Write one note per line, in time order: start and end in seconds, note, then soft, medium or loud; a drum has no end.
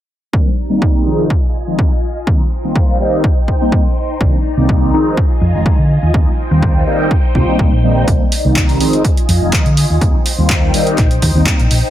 0.33 1.05 C3 medium
0.33 0.47 D#3 medium
0.33 0.47 G3 medium
0.33 0.48 A#3 medium
0.33 0.48 C4 medium
0.33 0.48 D4 medium
0.33 1.05 D#4 medium
0.33 1.05 D5 medium
0.33 1.05 A#5 medium
0.33 kick loud
0.69 1.03 D#3 medium
0.69 1.03 G3 medium
0.69 1.03 A#3 medium
0.69 1.03 C4 medium
0.69 1.03 D#4 medium
0.82 kick loud
1.05 1.28 D#3 loud
1.05 1.28 F3 medium
1.05 1.28 G#3 medium
1.05 1.28 C4 medium
1.05 1.28 D#4 loud
1.05 2.26 F4 medium
1.05 2.26 D#5 medium
1.05 2.26 G#5 medium
1.30 kick loud
1.67 1.89 D#3 medium
1.67 1.89 F3 medium
1.67 1.89 G#3 medium
1.67 1.89 C4 medium
1.67 1.89 D#4 medium
1.79 kick loud
2.27 2.41 D#3 medium
2.27 2.41 G3 medium
2.27 2.41 A#3 medium
2.27 2.41 C4 medium
2.27 2.42 D#4 medium
2.27 4.91 D#4 medium
2.27 4.19 C5 medium
2.27 4.19 G5 medium
2.27 kick loud
2.63 2.97 D#3 medium
2.63 2.97 G3 medium
2.63 2.97 A#3 medium
2.63 2.97 C4 medium
2.63 2.97 F4 medium
2.76 kick loud
3.00 3.22 D#3 medium
3.00 3.22 G3 medium
3.00 3.22 A#3 medium
3.00 3.22 C4 medium
3.00 3.22 D#4 loud
3.24 kick loud
3.48 kick medium
3.61 3.83 D#3 medium
3.61 3.83 G3 medium
3.61 3.83 A#3 medium
3.61 3.83 C4 medium
3.61 3.83 D#4 medium
3.72 kick loud
4.20 4.30 C2 medium
4.20 4.35 D#3 medium
4.20 4.35 G3 medium
4.20 4.35 A#3 medium
4.20 4.35 C4 medium
4.20 4.35 D4 medium
4.20 4.92 D5 medium
4.20 4.93 A#5 medium
4.20 kick loud
4.57 4.89 C2 medium
4.57 4.90 D#3 medium
4.57 4.90 G3 medium
4.57 4.91 A#3 medium
4.57 4.91 C4 medium
4.57 4.91 D#4 medium
4.69 kick loud
4.93 5.15 D#3 medium
4.93 5.15 F3 medium
4.93 5.15 G#3 medium
4.93 5.15 C4 medium
4.93 5.15 D#4 loud
4.93 6.13 F4 medium
4.93 6.13 D#5 medium
4.93 6.13 G#5 medium
5.17 kick loud
5.41 5.51 F2 medium
5.53 5.63 F1 medium
5.53 5.76 D#3 medium
5.53 5.76 F3 medium
5.53 5.76 G#3 medium
5.53 5.76 C4 medium
5.53 5.76 D#4 medium
5.66 kick loud
5.79 5.97 D3 loud
6.03 6.11 D#2 loud
6.13 6.28 D#3 medium
6.13 6.28 G3 medium
6.13 6.28 A#3 medium
6.13 6.28 C4 medium
6.13 8.06 D#4 medium
6.13 6.28 D#4 medium
6.13 8.06 C5 medium
6.13 8.06 G5 medium
6.13 kick loud
6.50 6.82 D#2 medium
6.50 6.84 D#3 medium
6.50 6.84 G3 medium
6.50 6.84 A#3 medium
6.50 6.84 C4 medium
6.50 6.84 F4 medium
6.63 kick loud
6.86 7.08 D#3 medium
6.86 7.09 G3 medium
6.86 7.09 A#3 medium
6.86 7.09 C4 medium
6.86 7.09 D#4 loud
7.11 kick loud
7.35 7.45 C2 medium
7.35 7.46 D#3 medium
7.35 7.46 G3 medium
7.35 7.46 A#3 medium
7.35 7.46 C4 medium
7.35 7.46 F4 medium
7.35 kick medium
7.48 7.70 D#3 medium
7.48 7.70 G3 medium
7.48 7.70 A#3 medium
7.48 7.70 C4 medium
7.48 7.70 D#4 medium
7.48 muted fingered electric bass stroke soft
7.59 7.69 C2 medium
7.59 kick loud
7.72 8.03 A#1 medium
7.83 8.05 D#3 medium
7.83 8.05 G3 medium
7.83 8.05 A#3 medium
7.83 8.05 C4 medium
7.83 8.05 D#4 loud
8.07 8.17 C2 medium
8.07 8.22 D#3 medium
8.07 8.22 G3 medium
8.07 8.22 A#3 medium
8.07 8.22 C4 medium
8.07 8.22 D4 medium
8.07 8.79 D#4 medium
8.07 8.79 D5 medium
8.07 8.79 A#5 medium
8.07 kick loud
8.07 closed hi-hat medium
8.32 open hi-hat loud
8.44 8.76 C2 medium
8.44 8.77 D#3 medium
8.44 8.77 G3 medium
8.44 8.78 A#3 medium
8.44 8.78 C4 medium
8.44 8.78 D#4 medium
8.56 kick loud
8.56 clap loud
8.56 closed hi-hat medium
8.69 open hi-hat medium
8.80 9.02 D#3 loud
8.80 9.02 F3 medium
8.80 9.02 G#3 medium
8.80 9.02 C4 medium
8.80 9.03 D#4 loud
8.80 10.00 F4 medium
8.80 10.00 D#5 medium
8.80 10.00 G#5 medium
8.80 open hi-hat loud
8.93 closed hi-hat medium
9.04 kick loud
9.04 closed hi-hat medium
9.17 closed hi-hat medium
9.29 9.38 F2 medium
9.29 open hi-hat loud
9.41 9.50 F1 medium
9.41 9.63 D#3 medium
9.41 9.63 F3 medium
9.41 9.63 G#3 medium
9.41 9.63 C4 medium
9.41 9.63 D#4 medium
9.53 kick loud
9.53 clap loud
9.53 closed hi-hat medium
9.66 9.84 D3 loud
9.66 closed hi-hat soft
9.77 open hi-hat loud
9.90 9.99 D#2 medium
10.01 10.16 D#3 medium
10.01 10.16 G3 medium
10.01 10.16 A#3 medium
10.01 10.16 C4 medium
10.01 11.90 D#4 medium
10.01 10.16 D#4 medium
10.01 11.90 C5 medium
10.01 11.90 G5 medium
10.01 kick loud
10.01 closed hi-hat medium
10.26 open hi-hat loud
10.38 10.70 D#2 medium
10.38 10.71 D#3 medium
10.38 10.71 G3 medium
10.38 10.71 A#3 medium
10.38 10.71 C4 medium
10.38 10.71 F4 medium
10.50 kick loud
10.50 clap loud
10.50 closed hi-hat medium
10.74 10.96 D#3 medium
10.74 10.96 G3 medium
10.74 10.96 A#3 medium
10.74 10.96 C4 medium
10.74 10.96 D#4 loud
10.74 open hi-hat loud
10.87 closed hi-hat medium
10.98 11.17 A#1 medium
10.98 kick loud
10.98 clap soft
10.98 closed hi-hat medium
11.11 closed hi-hat medium
11.22 11.32 D#2 medium
11.22 kick medium
11.22 open hi-hat loud
11.35 11.44 D#2 medium
11.35 11.57 D#3 medium
11.35 11.57 G3 medium
11.35 11.57 A#3 medium
11.35 11.57 C4 medium
11.35 11.57 D#4 medium
11.46 kick loud
11.46 clap loud
11.46 closed hi-hat medium
11.59 11.68 A#1 medium
11.59 closed hi-hat soft
11.71 11.81 A#1 loud
11.71 open hi-hat loud